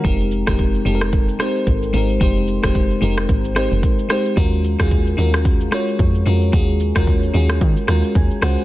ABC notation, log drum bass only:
X:1
M:4/4
L:1/16
Q:"Swing 16ths" 1/4=111
K:Ebdor
V:1 name="Log drum bass" clef=bass
F,,,3 F,,,3 F,,,4 z2 A,,,2 A,,,2 | F,,,3 F,,,3 F,,,2 A,,,3 F,,, z4 | E,,3 E,,3 E,,4 z2 F,,2 F,,2 | E,,3 E,,3 E,,2 E, z E,, z E,, z D,, z |]